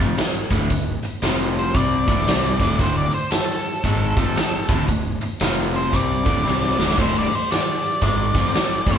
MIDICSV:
0, 0, Header, 1, 7, 480
1, 0, Start_track
1, 0, Key_signature, -1, "minor"
1, 0, Tempo, 521739
1, 656, Time_signature, 4, 2, 24, 8
1, 8263, End_track
2, 0, Start_track
2, 0, Title_t, "Lead electric guitar"
2, 0, Program_c, 0, 29
2, 1463, Note_on_c, 0, 72, 83
2, 1624, Note_off_c, 0, 72, 0
2, 1624, Note_on_c, 0, 74, 85
2, 2551, Note_off_c, 0, 74, 0
2, 2588, Note_on_c, 0, 72, 94
2, 2732, Note_off_c, 0, 72, 0
2, 2736, Note_on_c, 0, 74, 83
2, 2885, Note_off_c, 0, 74, 0
2, 2889, Note_on_c, 0, 72, 77
2, 3043, Note_on_c, 0, 69, 96
2, 3048, Note_off_c, 0, 72, 0
2, 4453, Note_off_c, 0, 69, 0
2, 5299, Note_on_c, 0, 72, 85
2, 5485, Note_off_c, 0, 72, 0
2, 5485, Note_on_c, 0, 74, 82
2, 6402, Note_off_c, 0, 74, 0
2, 6446, Note_on_c, 0, 72, 87
2, 6587, Note_off_c, 0, 72, 0
2, 6610, Note_on_c, 0, 74, 82
2, 6764, Note_off_c, 0, 74, 0
2, 6764, Note_on_c, 0, 72, 83
2, 6906, Note_off_c, 0, 72, 0
2, 6914, Note_on_c, 0, 74, 85
2, 8263, Note_off_c, 0, 74, 0
2, 8263, End_track
3, 0, Start_track
3, 0, Title_t, "Overdriven electric guitar"
3, 0, Program_c, 1, 29
3, 0, Note_on_c, 1, 41, 80
3, 0, Note_on_c, 1, 48, 79
3, 0, Note_on_c, 1, 53, 91
3, 163, Note_off_c, 1, 41, 0
3, 164, Note_off_c, 1, 48, 0
3, 170, Note_off_c, 1, 53, 0
3, 466, Note_on_c, 1, 38, 82
3, 475, Note_on_c, 1, 45, 89
3, 485, Note_on_c, 1, 50, 92
3, 645, Note_off_c, 1, 38, 0
3, 647, Note_off_c, 1, 45, 0
3, 655, Note_off_c, 1, 50, 0
3, 655, Note_on_c, 1, 38, 56
3, 658, Note_on_c, 1, 45, 57
3, 896, Note_off_c, 1, 38, 0
3, 898, Note_off_c, 1, 45, 0
3, 1125, Note_on_c, 1, 41, 90
3, 1132, Note_on_c, 1, 48, 98
3, 1139, Note_on_c, 1, 53, 92
3, 1592, Note_off_c, 1, 48, 0
3, 1600, Note_off_c, 1, 41, 0
3, 1603, Note_on_c, 1, 48, 80
3, 1611, Note_on_c, 1, 55, 93
3, 1612, Note_off_c, 1, 53, 0
3, 1618, Note_on_c, 1, 60, 88
3, 1898, Note_off_c, 1, 48, 0
3, 1902, Note_on_c, 1, 38, 81
3, 1906, Note_off_c, 1, 55, 0
3, 1909, Note_off_c, 1, 60, 0
3, 1910, Note_on_c, 1, 45, 90
3, 1919, Note_on_c, 1, 50, 84
3, 2080, Note_off_c, 1, 38, 0
3, 2084, Note_on_c, 1, 48, 90
3, 2087, Note_off_c, 1, 45, 0
3, 2091, Note_off_c, 1, 50, 0
3, 2095, Note_on_c, 1, 55, 92
3, 2096, Note_on_c, 1, 60, 84
3, 2382, Note_off_c, 1, 48, 0
3, 2388, Note_off_c, 1, 55, 0
3, 2388, Note_off_c, 1, 60, 0
3, 2389, Note_on_c, 1, 38, 82
3, 2394, Note_on_c, 1, 45, 94
3, 2403, Note_on_c, 1, 50, 93
3, 2557, Note_off_c, 1, 38, 0
3, 2565, Note_off_c, 1, 45, 0
3, 2568, Note_on_c, 1, 38, 95
3, 2569, Note_off_c, 1, 50, 0
3, 2576, Note_on_c, 1, 45, 92
3, 2580, Note_on_c, 1, 50, 99
3, 2859, Note_off_c, 1, 38, 0
3, 2868, Note_off_c, 1, 45, 0
3, 2870, Note_off_c, 1, 50, 0
3, 3543, Note_on_c, 1, 44, 78
3, 3544, Note_on_c, 1, 51, 88
3, 3557, Note_on_c, 1, 56, 97
3, 3832, Note_off_c, 1, 44, 0
3, 3832, Note_off_c, 1, 51, 0
3, 3837, Note_on_c, 1, 41, 76
3, 3839, Note_off_c, 1, 56, 0
3, 3842, Note_on_c, 1, 48, 84
3, 3848, Note_on_c, 1, 53, 83
3, 4011, Note_off_c, 1, 41, 0
3, 4013, Note_off_c, 1, 48, 0
3, 4016, Note_off_c, 1, 53, 0
3, 4315, Note_on_c, 1, 38, 78
3, 4322, Note_on_c, 1, 45, 87
3, 4329, Note_on_c, 1, 50, 93
3, 4490, Note_off_c, 1, 38, 0
3, 4493, Note_off_c, 1, 45, 0
3, 4497, Note_off_c, 1, 50, 0
3, 4501, Note_on_c, 1, 38, 59
3, 4510, Note_on_c, 1, 45, 63
3, 4739, Note_off_c, 1, 38, 0
3, 4744, Note_off_c, 1, 45, 0
3, 4984, Note_on_c, 1, 41, 86
3, 4993, Note_on_c, 1, 48, 87
3, 4997, Note_on_c, 1, 53, 99
3, 5440, Note_off_c, 1, 48, 0
3, 5448, Note_off_c, 1, 41, 0
3, 5451, Note_on_c, 1, 48, 82
3, 5460, Note_on_c, 1, 55, 97
3, 5461, Note_off_c, 1, 53, 0
3, 5464, Note_on_c, 1, 60, 87
3, 5745, Note_off_c, 1, 48, 0
3, 5749, Note_on_c, 1, 38, 79
3, 5750, Note_off_c, 1, 55, 0
3, 5753, Note_off_c, 1, 60, 0
3, 5755, Note_on_c, 1, 45, 90
3, 5765, Note_on_c, 1, 50, 83
3, 5927, Note_off_c, 1, 38, 0
3, 5930, Note_off_c, 1, 45, 0
3, 5934, Note_on_c, 1, 48, 84
3, 5935, Note_off_c, 1, 50, 0
3, 5940, Note_on_c, 1, 55, 85
3, 5946, Note_on_c, 1, 60, 94
3, 6228, Note_off_c, 1, 48, 0
3, 6231, Note_off_c, 1, 55, 0
3, 6233, Note_off_c, 1, 60, 0
3, 6237, Note_on_c, 1, 38, 81
3, 6254, Note_on_c, 1, 45, 93
3, 6255, Note_on_c, 1, 50, 92
3, 6403, Note_off_c, 1, 38, 0
3, 6411, Note_off_c, 1, 45, 0
3, 6414, Note_on_c, 1, 38, 88
3, 6420, Note_off_c, 1, 50, 0
3, 6422, Note_on_c, 1, 45, 89
3, 6429, Note_on_c, 1, 50, 88
3, 6707, Note_off_c, 1, 38, 0
3, 6711, Note_off_c, 1, 45, 0
3, 6715, Note_off_c, 1, 50, 0
3, 7377, Note_on_c, 1, 44, 93
3, 7378, Note_on_c, 1, 51, 85
3, 7383, Note_on_c, 1, 56, 105
3, 7668, Note_off_c, 1, 44, 0
3, 7669, Note_off_c, 1, 51, 0
3, 7671, Note_off_c, 1, 56, 0
3, 7686, Note_on_c, 1, 41, 78
3, 7693, Note_on_c, 1, 48, 89
3, 7696, Note_on_c, 1, 53, 87
3, 7855, Note_off_c, 1, 41, 0
3, 7858, Note_off_c, 1, 48, 0
3, 7860, Note_off_c, 1, 53, 0
3, 8162, Note_on_c, 1, 38, 84
3, 8172, Note_on_c, 1, 45, 89
3, 8176, Note_on_c, 1, 50, 91
3, 8263, Note_off_c, 1, 38, 0
3, 8263, Note_off_c, 1, 45, 0
3, 8263, Note_off_c, 1, 50, 0
3, 8263, End_track
4, 0, Start_track
4, 0, Title_t, "Fingered electric bass"
4, 0, Program_c, 2, 33
4, 0, Note_on_c, 2, 29, 88
4, 160, Note_off_c, 2, 29, 0
4, 469, Note_on_c, 2, 26, 91
4, 639, Note_off_c, 2, 26, 0
4, 646, Note_on_c, 2, 26, 68
4, 931, Note_off_c, 2, 26, 0
4, 1126, Note_on_c, 2, 29, 91
4, 1577, Note_off_c, 2, 29, 0
4, 1605, Note_on_c, 2, 36, 91
4, 1890, Note_off_c, 2, 36, 0
4, 1915, Note_on_c, 2, 26, 94
4, 2077, Note_off_c, 2, 26, 0
4, 2083, Note_on_c, 2, 36, 83
4, 2369, Note_off_c, 2, 36, 0
4, 2389, Note_on_c, 2, 26, 88
4, 2559, Note_off_c, 2, 26, 0
4, 2568, Note_on_c, 2, 26, 90
4, 2852, Note_off_c, 2, 26, 0
4, 3534, Note_on_c, 2, 32, 96
4, 3815, Note_off_c, 2, 32, 0
4, 3833, Note_on_c, 2, 29, 85
4, 4001, Note_off_c, 2, 29, 0
4, 4314, Note_on_c, 2, 26, 86
4, 4482, Note_off_c, 2, 26, 0
4, 4491, Note_on_c, 2, 26, 72
4, 4774, Note_off_c, 2, 26, 0
4, 4975, Note_on_c, 2, 29, 91
4, 5422, Note_off_c, 2, 29, 0
4, 5459, Note_on_c, 2, 36, 93
4, 5738, Note_off_c, 2, 36, 0
4, 5760, Note_on_c, 2, 26, 84
4, 5925, Note_off_c, 2, 26, 0
4, 5939, Note_on_c, 2, 36, 77
4, 6218, Note_off_c, 2, 36, 0
4, 6245, Note_on_c, 2, 26, 90
4, 6408, Note_off_c, 2, 26, 0
4, 6421, Note_on_c, 2, 26, 88
4, 6699, Note_off_c, 2, 26, 0
4, 7378, Note_on_c, 2, 32, 90
4, 7657, Note_off_c, 2, 32, 0
4, 7678, Note_on_c, 2, 29, 93
4, 7844, Note_off_c, 2, 29, 0
4, 8153, Note_on_c, 2, 26, 94
4, 8263, Note_off_c, 2, 26, 0
4, 8263, End_track
5, 0, Start_track
5, 0, Title_t, "Muted fingered electric bass strokes"
5, 168, Note_on_c, 9, 29, 35
5, 260, Note_off_c, 9, 29, 0
5, 946, Note_on_c, 9, 29, 39
5, 1038, Note_off_c, 9, 29, 0
5, 2881, Note_on_c, 9, 29, 41
5, 2973, Note_off_c, 9, 29, 0
5, 4021, Note_on_c, 9, 29, 38
5, 4113, Note_off_c, 9, 29, 0
5, 4809, Note_on_c, 9, 29, 39
5, 4901, Note_off_c, 9, 29, 0
5, 6731, Note_on_c, 9, 29, 37
5, 6823, Note_off_c, 9, 29, 0
5, 7861, Note_on_c, 9, 29, 35
5, 7953, Note_off_c, 9, 29, 0
5, 8263, End_track
6, 0, Start_track
6, 0, Title_t, "Muted overdriven electric guitar strokes"
6, 167, Note_on_c, 9, 29, 59
6, 259, Note_off_c, 9, 29, 0
6, 966, Note_on_c, 9, 29, 54
6, 1058, Note_off_c, 9, 29, 0
6, 2870, Note_on_c, 9, 29, 54
6, 2962, Note_off_c, 9, 29, 0
6, 4026, Note_on_c, 9, 29, 54
6, 4118, Note_off_c, 9, 29, 0
6, 4808, Note_on_c, 9, 29, 60
6, 4900, Note_off_c, 9, 29, 0
6, 6732, Note_on_c, 9, 29, 56
6, 6824, Note_off_c, 9, 29, 0
6, 7867, Note_on_c, 9, 29, 54
6, 7959, Note_off_c, 9, 29, 0
6, 8263, End_track
7, 0, Start_track
7, 0, Title_t, "Drums"
7, 158, Note_on_c, 9, 42, 88
7, 170, Note_on_c, 9, 38, 107
7, 250, Note_off_c, 9, 42, 0
7, 262, Note_off_c, 9, 38, 0
7, 466, Note_on_c, 9, 36, 87
7, 466, Note_on_c, 9, 42, 66
7, 558, Note_off_c, 9, 36, 0
7, 558, Note_off_c, 9, 42, 0
7, 643, Note_on_c, 9, 42, 81
7, 646, Note_on_c, 9, 36, 81
7, 735, Note_off_c, 9, 42, 0
7, 738, Note_off_c, 9, 36, 0
7, 943, Note_on_c, 9, 42, 62
7, 1035, Note_off_c, 9, 42, 0
7, 1124, Note_on_c, 9, 42, 80
7, 1136, Note_on_c, 9, 38, 100
7, 1216, Note_off_c, 9, 42, 0
7, 1228, Note_off_c, 9, 38, 0
7, 1430, Note_on_c, 9, 42, 56
7, 1522, Note_off_c, 9, 42, 0
7, 1607, Note_on_c, 9, 36, 92
7, 1609, Note_on_c, 9, 42, 76
7, 1699, Note_off_c, 9, 36, 0
7, 1701, Note_off_c, 9, 42, 0
7, 1912, Note_on_c, 9, 36, 112
7, 1920, Note_on_c, 9, 42, 66
7, 2004, Note_off_c, 9, 36, 0
7, 2012, Note_off_c, 9, 42, 0
7, 2015, Note_on_c, 9, 38, 28
7, 2091, Note_on_c, 9, 42, 85
7, 2103, Note_off_c, 9, 38, 0
7, 2103, Note_on_c, 9, 38, 111
7, 2183, Note_off_c, 9, 42, 0
7, 2195, Note_off_c, 9, 38, 0
7, 2387, Note_on_c, 9, 42, 62
7, 2388, Note_on_c, 9, 36, 94
7, 2399, Note_on_c, 9, 38, 32
7, 2479, Note_off_c, 9, 42, 0
7, 2480, Note_off_c, 9, 36, 0
7, 2491, Note_off_c, 9, 38, 0
7, 2568, Note_on_c, 9, 42, 85
7, 2569, Note_on_c, 9, 36, 93
7, 2660, Note_off_c, 9, 42, 0
7, 2661, Note_off_c, 9, 36, 0
7, 2862, Note_on_c, 9, 42, 68
7, 2954, Note_off_c, 9, 42, 0
7, 3042, Note_on_c, 9, 42, 80
7, 3054, Note_on_c, 9, 38, 105
7, 3134, Note_off_c, 9, 42, 0
7, 3146, Note_off_c, 9, 38, 0
7, 3350, Note_on_c, 9, 42, 64
7, 3442, Note_off_c, 9, 42, 0
7, 3532, Note_on_c, 9, 36, 92
7, 3532, Note_on_c, 9, 42, 80
7, 3624, Note_off_c, 9, 36, 0
7, 3624, Note_off_c, 9, 42, 0
7, 3835, Note_on_c, 9, 36, 110
7, 3835, Note_on_c, 9, 42, 70
7, 3927, Note_off_c, 9, 36, 0
7, 3927, Note_off_c, 9, 42, 0
7, 4013, Note_on_c, 9, 42, 86
7, 4025, Note_on_c, 9, 38, 108
7, 4105, Note_off_c, 9, 42, 0
7, 4117, Note_off_c, 9, 38, 0
7, 4308, Note_on_c, 9, 42, 64
7, 4313, Note_on_c, 9, 36, 102
7, 4400, Note_off_c, 9, 42, 0
7, 4405, Note_off_c, 9, 36, 0
7, 4484, Note_on_c, 9, 42, 83
7, 4492, Note_on_c, 9, 36, 86
7, 4576, Note_off_c, 9, 42, 0
7, 4584, Note_off_c, 9, 36, 0
7, 4791, Note_on_c, 9, 42, 64
7, 4883, Note_off_c, 9, 42, 0
7, 4965, Note_on_c, 9, 42, 91
7, 4977, Note_on_c, 9, 38, 98
7, 5057, Note_off_c, 9, 42, 0
7, 5069, Note_off_c, 9, 38, 0
7, 5275, Note_on_c, 9, 42, 64
7, 5367, Note_off_c, 9, 42, 0
7, 5456, Note_on_c, 9, 36, 85
7, 5457, Note_on_c, 9, 42, 83
7, 5548, Note_off_c, 9, 36, 0
7, 5549, Note_off_c, 9, 42, 0
7, 5760, Note_on_c, 9, 36, 107
7, 5765, Note_on_c, 9, 42, 69
7, 5852, Note_off_c, 9, 36, 0
7, 5857, Note_off_c, 9, 42, 0
7, 5957, Note_on_c, 9, 38, 60
7, 6049, Note_off_c, 9, 38, 0
7, 6098, Note_on_c, 9, 38, 56
7, 6190, Note_off_c, 9, 38, 0
7, 6250, Note_on_c, 9, 38, 81
7, 6342, Note_off_c, 9, 38, 0
7, 6347, Note_on_c, 9, 38, 80
7, 6421, Note_on_c, 9, 36, 94
7, 6429, Note_on_c, 9, 42, 81
7, 6429, Note_on_c, 9, 49, 88
7, 6439, Note_off_c, 9, 38, 0
7, 6513, Note_off_c, 9, 36, 0
7, 6521, Note_off_c, 9, 42, 0
7, 6521, Note_off_c, 9, 49, 0
7, 6729, Note_on_c, 9, 42, 63
7, 6821, Note_off_c, 9, 42, 0
7, 6907, Note_on_c, 9, 42, 86
7, 6919, Note_on_c, 9, 38, 102
7, 6999, Note_off_c, 9, 42, 0
7, 7011, Note_off_c, 9, 38, 0
7, 7202, Note_on_c, 9, 42, 63
7, 7294, Note_off_c, 9, 42, 0
7, 7378, Note_on_c, 9, 36, 92
7, 7380, Note_on_c, 9, 42, 73
7, 7470, Note_off_c, 9, 36, 0
7, 7472, Note_off_c, 9, 42, 0
7, 7680, Note_on_c, 9, 36, 100
7, 7681, Note_on_c, 9, 42, 68
7, 7772, Note_off_c, 9, 36, 0
7, 7773, Note_off_c, 9, 42, 0
7, 7787, Note_on_c, 9, 38, 28
7, 7858, Note_on_c, 9, 42, 83
7, 7870, Note_off_c, 9, 38, 0
7, 7870, Note_on_c, 9, 38, 104
7, 7950, Note_off_c, 9, 42, 0
7, 7962, Note_off_c, 9, 38, 0
7, 8157, Note_on_c, 9, 36, 98
7, 8162, Note_on_c, 9, 42, 67
7, 8174, Note_on_c, 9, 38, 31
7, 8249, Note_off_c, 9, 36, 0
7, 8254, Note_off_c, 9, 42, 0
7, 8263, Note_off_c, 9, 38, 0
7, 8263, End_track
0, 0, End_of_file